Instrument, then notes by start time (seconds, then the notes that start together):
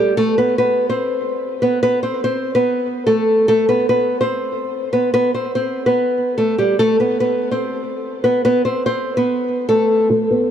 nylon-string guitar
Already playing: G3 G4
0.17 A3 A4
0.38 B3 B4
0.58 B3 B4
0.89 C4 C5
1.62 B3 B4
1.83 B3 B4
2.03 C4 C5
2.24 C4 C5
2.55 B3 B4
3.07 A3 A4
3.48 A3 A4
3.69 B3 B4
3.89 B3 B4
4.21 C4 C5
4.93 B3 B4
5.14 B3 B4
5.34 C4 C5
5.55 C4 C5
5.86 B3 B4
6.38 A3 A4
6.58 G3 G4
6.79 A3 A4
7.00 B3 B4
7.20 B3 B4
7.51 C4 C5
8.24 B3 B4
8.45 B3 B4
8.65 C4 C5
8.86 C4 C5
9.17 B3 B4
9.69 A3 A4
10.10 A3 A4
10.31 B3 B4